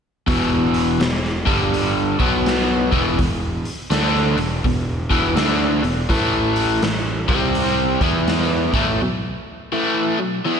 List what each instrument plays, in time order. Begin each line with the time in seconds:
0.27 picked electric bass E1, overdriven electric guitar E2 B2 E3, kick, open hi-hat
0.74 open hi-hat
1.00 picked electric bass E1, overdriven electric guitar E2 B2, snare, open hi-hat
1.25 snare
1.46 picked electric bass G1, overdriven electric guitar G2 D3 G3, kick, open hi-hat
1.74 open hi-hat
2.19 picked electric bass B1, overdriven electric guitar B2 F#3 B3, kick, open hi-hat
2.46 snare, open hi-hat
2.92 picked electric bass E1, overdriven electric guitar E2 B2 E3, kick, open hi-hat
3.18 picked electric bass E1, overdriven electric guitar E2 B2, kick, open hi-hat
3.65 open hi-hat
3.90 picked electric bass D2, overdriven electric guitar D3 A3 D4, snare, open hi-hat
4.15 snare
4.37 picked electric bass E1, overdriven electric guitar E2 B2, open hi-hat
4.64 picked electric bass E1, overdriven electric guitar E2 B2, kick, open hi-hat
5.10 picked electric bass E1, overdriven electric guitar E2 B2 E3, kick, open hi-hat
5.36 picked electric bass D2, overdriven electric guitar D3 A3 D4, snare, open hi-hat
5.83 picked electric bass E1, overdriven electric guitar E2 B2, open hi-hat
6.09 picked electric bass A1, overdriven electric guitar A2 E3 A3, kick, open hi-hat
6.56 open hi-hat
6.82 picked electric bass A1, overdriven electric guitar A2 E3, snare, open hi-hat
7.28 picked electric bass C2, overdriven electric guitar C3 G3 C4, kick, open hi-hat
7.55 open hi-hat
8.01 picked electric bass E2, overdriven electric guitar E3 B3 E4, kick, open hi-hat
8.28 snare, open hi-hat
8.74 picked electric bass A1, overdriven electric guitar A2 E3 A3, kick, open hi-hat
9.01 overdriven electric guitar B2 F#3
9.72 overdriven electric guitar A2 E3 A3
10.19 overdriven electric guitar B2 F#3
10.45 overdriven electric guitar E3 B3 E4